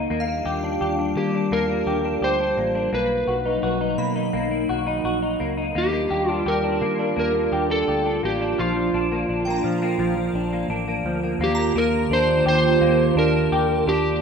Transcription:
Already playing: clean electric guitar D#4 F#4
0.10 fingered electric bass D#2, ambient pad G3 D4 F4 G4, clean electric guitar A#3
0.20 synth bell F5
0.28 clean electric guitar A#3
0.45 fingered electric bass D#2, clean electric guitar G4
0.64 clean electric guitar D4
0.81 fingered electric bass D#2, clean electric guitar G4
0.99 clean electric guitar D4
1.16 fingered electric bass D#3, clean electric guitar A#3, electric slide guitar G4
1.34 clean electric guitar D4
1.51 fingered electric bass D#2, clean electric guitar A#3, electric slide guitar A#4
1.69 clean electric guitar A#3
1.86 fingered electric bass D#2, clean electric guitar G4
2.05 clean electric guitar D4
2.21 fingered electric bass D2, clean electric guitar G4, electric slide guitar C5
2.40 clean electric guitar D4
2.57 fingered electric bass A1, clean electric guitar A#3
2.75 clean electric guitar D4
2.91 fingered electric bass B1, ambient pad F#3 D#4, clean electric guitar A#3, electric slide guitar B4
3.27 fingered electric bass B1, clean electric guitar F#4
3.46 clean electric guitar D#4
3.63 fingered electric bass B1, clean electric guitar F#4
3.81 clean electric guitar D#4
3.98 fingered electric bass B2, clean electric guitar A#3, synth bell B5
4.16 clean electric guitar D#4
4.33 fingered electric bass B1, clean electric guitar A#3
4.51 clean electric guitar A#3
4.69 fingered electric bass B1, clean electric guitar F#4
4.87 clean electric guitar D#4
5.04 fingered electric bass A#1, clean electric guitar F#4
5.22 clean electric guitar D#4
5.40 fingered electric bass C#2, clean electric guitar A#3
5.57 clean electric guitar D#4
5.74 fingered electric bass D#2, ambient pad G3 D4 F4 G4, clean electric guitar A#3, electric slide guitar G4
5.92 clean electric guitar A#3
6.10 fingered electric bass D#2, clean electric guitar G4
6.29 clean electric guitar D4, electric slide guitar F4
6.46 fingered electric bass D#2, clean electric guitar G4, electric slide guitar A#4
6.64 clean electric guitar D4
6.81 fingered electric bass D#3, clean electric guitar A#3
6.99 clean electric guitar D4
7.16 fingered electric bass D#2, clean electric guitar A#3, electric slide guitar A#4
7.35 clean electric guitar A#3
7.52 fingered electric bass D#2, clean electric guitar G4
7.70 clean electric guitar D4, electric slide guitar A4
7.88 fingered electric bass D2, clean electric guitar G4
8.06 clean electric guitar D4
8.23 fingered electric bass A1, clean electric guitar A#3, electric slide guitar G4
8.41 clean electric guitar D4
8.58 fingered electric bass A#1, clean electric guitar F3, electric slide guitar F4
8.76 clean electric guitar F3
8.93 fingered electric bass A#1, clean electric guitar D4
9.12 clean electric guitar A#3
9.28 fingered electric bass A#1, clean electric guitar D4
9.45 clean electric guitar A#3, synth bell G5
9.50 synth bell A#5
9.63 fingered electric bass A#2, clean electric guitar F3
9.82 clean electric guitar A#3
9.98 fingered electric bass A#1, clean electric guitar F3
10.17 clean electric guitar F3
10.33 fingered electric bass A#1, clean electric guitar D4
10.53 clean electric guitar A#3
10.68 fingered electric bass A1, clean electric guitar D4
10.88 clean electric guitar A#3
11.04 fingered electric bass D2, clean electric guitar F3
11.23 clean electric guitar A#3
11.39 fingered electric bass D#2, ambient pad D#3 A#3 D4 F4 G4, clean electric guitar A#3
11.44 electric slide guitar G4
11.55 synth bell A#5
11.75 fingered electric bass D#2, clean electric guitar A#3, electric slide guitar A#4
12.10 fingered electric bass D#2, clean electric guitar D4, electric slide guitar C5
12.45 fingered electric bass D#2, clean electric guitar G4, electric slide guitar C5
12.81 fingered electric bass D#2, clean electric guitar A#3
13.15 fingered electric bass D#2, clean electric guitar D4, electric slide guitar A#4
13.51 fingered electric bass D#2, clean electric guitar G4
13.86 fingered electric bass D#2, clean electric guitar D4, electric slide guitar G4

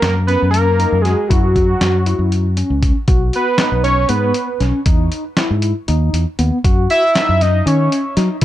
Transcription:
0.02 fingered electric bass F#2, analog synth lead A#4, snare, closed hi-hat
0.27 tine electric piano C#4, analog synth lead B4, closed hi-hat
0.42 fingered electric bass F#2
0.51 analog synth lead A#4, closed hi-hat
0.79 tine electric piano D#4, closed hi-hat
0.92 fingered electric bass F#2
1.02 tine electric piano F#4, analog synth lead G#4, snare, closed hi-hat
1.29 fingered electric bass F#2, tine electric piano E4, analog synth lead F#4, kick, closed hi-hat
1.56 tine electric piano F#4, kick, closed hi-hat
1.81 fingered electric bass F#2, snare, closed hi-hat
2.06 tine electric piano E4, closed hi-hat
2.19 fingered electric bass F#2
2.32 closed hi-hat
2.57 tine electric piano C#4, closed hi-hat
2.70 fingered electric bass C#2
2.83 kick, closed hi-hat
3.08 fingered electric bass B1, tine electric piano F#4, kick, closed hi-hat
3.33 analog synth lead B4, closed hi-hat
3.58 tine electric piano D#4, snare, closed hi-hat
3.72 fingered electric bass B1
3.84 analog synth lead C#5, closed hi-hat
4.09 fingered electric bass G#2, tine electric piano B3, analog synth lead B4, closed hi-hat
4.34 closed hi-hat
4.60 fingered electric bass B1, tine electric piano C#4, snare, closed hi-hat
4.86 fingered electric bass E2, tine electric piano D#4, kick, closed hi-hat
5.12 closed hi-hat
5.37 tine electric piano E4, snare, closed hi-hat
5.51 fingered electric bass G#2
5.62 closed hi-hat
5.88 fingered electric bass D#2, tine electric piano D#4, closed hi-hat
6.13 fingered electric bass E2, closed hi-hat
6.39 fingered electric bass D#2, tine electric piano B3, closed hi-hat
6.64 fingered electric bass F#2, tine electric piano F#4, kick, closed hi-hat
6.90 analog synth lead E5, closed hi-hat
7.15 tine electric piano D#4, snare, closed hi-hat
7.29 fingered electric bass F#2
7.41 analog synth lead D#5, snare, closed hi-hat
7.66 fingered electric bass D#3, tine electric piano C#4, analog synth lead C#5, closed hi-hat
7.92 closed hi-hat
8.17 fingered electric bass F#3, tine electric piano D#4, snare, closed hi-hat
8.41 tine electric piano E4, closed hi-hat

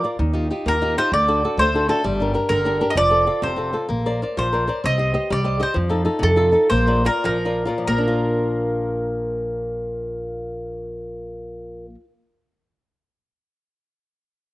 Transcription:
0.04 nylon-string guitar F4 A#4 D5
0.19 upright bass D#2, nylon-string guitar D#3
0.33 nylon-string guitar D#4 F4 G4
0.50 nylon-string guitar D#4 F4 G4
0.66 upright bass D#2, nylon-string guitar A#3, mandolin A#4
0.82 nylon-string guitar D#4 F4 G4
0.97 nylon-string guitar D#4 F4 G4, mandolin C5
1.12 upright bass D2, nylon-string guitar D3, mandolin D5
1.28 nylon-string guitar D4 F#4 A4
1.44 nylon-string guitar D4 F#4 A4
1.58 upright bass D2, nylon-string guitar A3, mandolin C5
1.74 nylon-string guitar D4 F#4 A4
1.89 nylon-string guitar D4 F#4 A4, mandolin A4
2.04 upright bass G1, nylon-string guitar G3
2.20 nylon-string guitar D4 G4 A#4
2.34 nylon-string guitar D4 G4 A#4
2.49 upright bass G1, nylon-string guitar D3, mandolin A#4
2.65 nylon-string guitar D4 G4 A#4
2.81 nylon-string guitar D4 G4 A#4
2.90 mandolin D#5
2.95 upright bass F1, nylon-string guitar F3, mandolin D5
3.10 nylon-string guitar C4 F4 A4
3.27 nylon-string guitar C4 F4 A4
3.42 upright bass F1, nylon-string guitar C3, mandolin C5
3.56 nylon-string guitar C4 F4 A4
3.73 nylon-string guitar C4 F4 A4
3.89 upright bass A#1, nylon-string guitar A#3
4.06 nylon-string guitar A#4 C5 D5
4.22 nylon-string guitar A#4 C5 D5
4.37 upright bass A#1, nylon-string guitar F3, mandolin C5
4.53 nylon-string guitar A#4 C5 D5
4.67 nylon-string guitar A#4 C5 D5
4.84 upright bass C2, nylon-string guitar C4, mandolin D#5
4.98 nylon-string guitar G4 C5 D#5
5.14 nylon-string guitar G4 C5 D#5
5.30 upright bass C2, nylon-string guitar G3, mandolin D5
5.44 nylon-string guitar G4 C5 D#5
5.60 nylon-string guitar G4 C5 D#5, mandolin C5
5.74 upright bass F2, nylon-string guitar F3
5.89 nylon-string guitar D#4 F4 A4
6.05 nylon-string guitar D#4 F4 A4
6.19 upright bass F2, nylon-string guitar C3
6.23 mandolin A4
6.36 nylon-string guitar D#4 F4 A4
6.52 nylon-string guitar D#4 F4 A4
6.70 upright bass A#1, nylon-string guitar A#3, mandolin C5
6.87 nylon-string guitar F4 A#4 D5
7.05 nylon-string guitar F4 A#4 D5, mandolin A#4
7.24 upright bass A#1, nylon-string guitar F3, mandolin A#4
7.45 nylon-string guitar F4 A#4 D5
7.65 nylon-string guitar A#2 F4 A#4 D5
7.78 nylon-string guitar F3
7.87 upright bass A#1, nylon-string guitar A#3, mandolin A#4
7.98 nylon-string guitar D4
8.08 nylon-string guitar F4

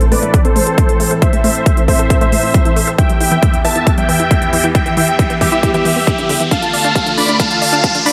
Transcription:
Already playing: analog synth pad A2 E3 C4 A4, riser
0.01 synth arpeggio sound A2, closed hi-hat
0.12 synth arpeggio sound A3, supersaw synth B4 D5, open hi-hat
0.23 synth arpeggio sound A3, closed hi-hat
0.34 synth arpeggio sound A4, kick, closed hi-hat
0.45 synth arpeggio sound C4, supersaw synth A4 C5, closed hi-hat
0.56 synth arpeggio sound A3, open hi-hat
0.67 synth arpeggio sound A4, closed hi-hat
0.78 synth arpeggio sound D4, kick, closed hi-hat
0.89 synth arpeggio sound A3, closed hi-hat
1.00 synth arpeggio sound A3, open hi-hat
1.11 synth arpeggio sound A3, closed hi-hat
1.22 synth arpeggio sound A4, supersaw synth C5 E5, kick, closed hi-hat
1.33 synth arpeggio sound A3, closed hi-hat
1.44 synth arpeggio sound A3, supersaw synth C5 E5, open hi-hat
1.55 closed hi-hat
1.66 synth arpeggio sound A4, kick, closed hi-hat
1.77 synth arpeggio sound E4, closed hi-hat
1.88 synth arpeggio sound A3, supersaw synth C5 E5, kick, open hi-hat
1.99 synth arpeggio sound A4, closed hi-hat
2.10 synth arpeggio sound A4, kick, closed hi-hat
2.21 synth arpeggio sound A3, supersaw synth C5 E5, closed hi-hat
2.32 synth arpeggio sound A3, open hi-hat
2.43 synth arpeggio sound E4, open hi-hat
2.54 synth arpeggio sound G3, kick, closed hi-hat
2.65 synth arpeggio sound E4, closed hi-hat
2.76 synth arpeggio sound A3, open hi-hat
2.87 synth arpeggio sound A4, closed hi-hat
2.98 analog synth pad E2 E3 B3 G4, synth arpeggio sound E3, supersaw synth E5 G5, kick, closed hi-hat
3.09 synth arpeggio sound G3, closed hi-hat
3.20 synth arpeggio sound E4, supersaw synth E5 G5, open hi-hat
3.31 synth arpeggio sound E3, closed hi-hat
3.43 synth arpeggio sound A3, kick, closed hi-hat
3.54 synth arpeggio sound E2, closed hi-hat
3.65 synth arpeggio sound E3, supersaw synth E5 A5, open hi-hat
3.76 synth arpeggio sound E3, closed hi-hat
3.87 synth arpeggio sound E4, kick, closed hi-hat
3.98 synth arpeggio sound G3, supersaw synth E5 G5, closed hi-hat
4.09 synth arpeggio sound E3, open hi-hat
4.20 synth arpeggio sound E4, closed hi-hat
4.31 synth arpeggio sound A3, kick, closed hi-hat
4.42 synth arpeggio sound E3, closed hi-hat
4.53 synth arpeggio sound E3, open hi-hat
4.64 synth arpeggio sound E3, closed hi-hat
4.75 synth arpeggio sound E4, supersaw synth E5 G5, kick, closed hi-hat
4.86 synth arpeggio sound E3, closed hi-hat
4.97 synth arpeggio sound E3, supersaw synth E5 G5, open hi-hat
5.08 closed hi-hat
5.19 synth arpeggio sound E4, kick, closed hi-hat
5.30 synth arpeggio sound B3, closed hi-hat
5.41 synth arpeggio sound E3, supersaw synth G4 E5, kick, open hi-hat
5.52 synth arpeggio sound E4, closed hi-hat
5.63 synth arpeggio sound E4, kick, closed hi-hat
5.74 synth arpeggio sound E3, supersaw synth G4 E5, closed hi-hat
5.85 synth arpeggio sound E3, open hi-hat
5.96 synth arpeggio sound B3, open hi-hat
6.07 synth arpeggio sound D3, kick, closed hi-hat
6.18 synth arpeggio sound D3, closed hi-hat
6.29 synth arpeggio sound D3, open hi-hat
6.40 synth arpeggio sound E3, closed hi-hat
6.51 analog synth pad D2 D3 A3 F4, synth arpeggio sound D4, supersaw synth F5 A5, kick, closed hi-hat
6.62 synth arpeggio sound F4, closed hi-hat
6.73 synth arpeggio sound D5, supersaw synth F5 A5, open hi-hat
6.84 synth arpeggio sound D4, closed hi-hat
6.96 synth arpeggio sound G4, kick, closed hi-hat
7.07 synth arpeggio sound D3, closed hi-hat
7.18 synth arpeggio sound D4, supersaw synth D5 B5, open hi-hat
7.29 synth arpeggio sound D4, closed hi-hat
7.40 synth arpeggio sound D4, supersaw synth F5 A5, kick, closed hi-hat
7.51 synth arpeggio sound F4, closed hi-hat
7.62 synth arpeggio sound D5, supersaw synth F5 A5, open hi-hat
7.73 synth arpeggio sound D4, closed hi-hat
7.84 synth arpeggio sound G4, kick, closed hi-hat
7.95 synth arpeggio sound D3, closed hi-hat
8.06 synth arpeggio sound D4, supersaw synth D5 B5, open hi-hat

